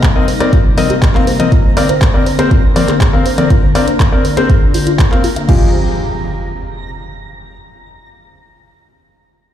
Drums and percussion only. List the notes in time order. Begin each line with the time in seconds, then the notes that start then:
0.03 kick, clap, closed hi-hat
0.28 open hi-hat
0.40 closed hi-hat
0.53 kick, closed hi-hat
0.78 open hi-hat
0.90 closed hi-hat
1.02 kick, clap, closed hi-hat
1.15 clap
1.27 open hi-hat
1.40 closed hi-hat
1.52 kick, closed hi-hat
1.77 open hi-hat
1.89 closed hi-hat
2.02 kick, clap, closed hi-hat
2.26 open hi-hat
2.39 closed hi-hat
2.51 kick, closed hi-hat
2.76 open hi-hat
2.88 clap, closed hi-hat
3.01 kick, clap, closed hi-hat
3.26 open hi-hat
3.38 closed hi-hat
3.50 kick, closed hi-hat
3.75 open hi-hat
3.88 closed hi-hat
4.00 kick, clap, closed hi-hat
4.25 open hi-hat
4.37 closed hi-hat
4.50 kick, closed hi-hat
4.74 open hi-hat
4.87 closed hi-hat
4.99 kick, clap, closed hi-hat
5.12 clap
5.24 open hi-hat
5.36 closed hi-hat
5.49 kick, crash